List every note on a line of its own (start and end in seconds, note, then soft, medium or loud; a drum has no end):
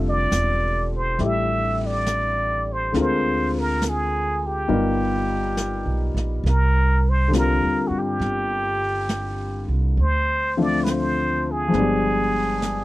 0.00 0.27 F1 medium
0.00 2.90 D3 soft
0.00 1.17 G3 soft
0.00 2.93 C4 soft
0.00 2.95 F4 soft
0.00 2.96 A4 soft
0.09 0.90 D5 medium
0.32 1.15 E1 medium
0.32 snare soft
0.32 hi-hat pedal medium
0.96 1.27 C5 medium
1.18 2.90 A1 medium
1.18 2.93 G3 soft
1.18 2.94 A3 soft
1.18 2.94 E4 soft
1.18 2.95 G4 soft
1.18 brush sweep soft
1.18 snare soft
1.25 1.88 E5 medium
1.86 2.74 D5 medium
2.06 snare soft
2.06 hi-hat pedal soft
2.73 2.97 C5 medium
2.92 4.65 D2 medium
2.92 4.68 D3 soft
2.92 4.69 G#3 soft
2.92 4.70 C4 soft
2.92 4.67 F4 soft
2.92 brush sweep soft
2.92 snare soft
2.98 4.68 A#4 soft
2.98 3.61 C5 medium
3.60 3.91 A#4 medium
3.82 snare soft
3.82 hi-hat pedal soft
3.89 4.48 G#4 medium
4.47 6.20 G4 medium
4.68 5.82 G1 medium
4.68 6.45 G3 soft
4.68 6.45 B3 soft
4.68 6.45 D#4 soft
4.68 6.45 F4 soft
4.68 6.45 A#4 medium
4.68 brush sweep soft
5.57 snare soft
5.57 hi-hat pedal soft
5.86 6.13 B1 medium
6.14 6.42 A#1 medium
6.14 snare soft
6.44 7.58 C2 medium
6.44 brush sweep soft
6.44 snare soft
6.49 7.11 A#4 medium
7.09 7.35 C5 medium
7.28 9.95 D3 soft
7.28 9.96 G3 soft
7.33 9.97 C4 soft
7.33 9.98 F4 soft
7.33 snare soft
7.33 hi-hat pedal medium
7.38 7.89 A#4 medium
7.38 10.00 A#4 soft
7.62 7.89 D#2 medium
7.88 8.18 G2 medium
7.88 8.00 F#4 medium
7.99 9.72 G4 medium
8.20 9.64 G1 medium
8.20 brush sweep soft
8.20 snare soft
9.09 snare soft
9.09 hi-hat pedal soft
9.68 9.95 C2 medium
9.97 11.69 D2 medium
9.97 brush sweep soft
10.02 10.64 C5 medium
10.57 11.73 D3 soft
10.57 11.67 F3 soft
10.57 11.74 A3 medium
10.57 11.73 C4 soft
10.57 11.74 F4 soft
10.62 10.85 D5 medium
10.84 10.92 B4 medium
10.84 snare soft
10.84 hi-hat pedal soft
10.91 11.53 C5 medium
11.52 12.84 G#4 medium
11.68 12.84 F3 soft
11.68 12.84 G#3 soft
11.72 12.84 G1 medium
11.72 12.84 B3 soft
11.72 brush sweep soft
11.72 snare soft
11.77 12.84 G3 medium
11.77 12.84 D4 soft
12.62 snare soft
12.62 hi-hat pedal soft